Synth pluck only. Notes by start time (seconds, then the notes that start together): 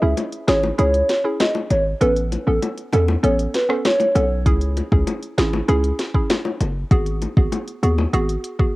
0.02 C#4 E4 G#4
0.48 C#4 E4 G#4
0.78 C#4 E4 G#4
1.24 C#4 E4 G#4
2.01 B3 C#4 A4
2.47 B3 C#4 A4
2.93 B3 C#4 A4
3.23 B3 C#4 A4
3.69 B3 C#4 A4
4.15 B3 C#4 A4
4.46 C#4 E4 G#4
4.92 C#4 E4 G#4
5.38 C#4 E4 G#4
5.68 C#4 E4 G#4
6.14 C#4 E4 G#4
6.91 B3 F#4 G#4
7.37 B3 F#4 G#4
7.83 B3 F#4 G#4
8.13 B3 F#4 G#4
8.59 B3 F#4 G#4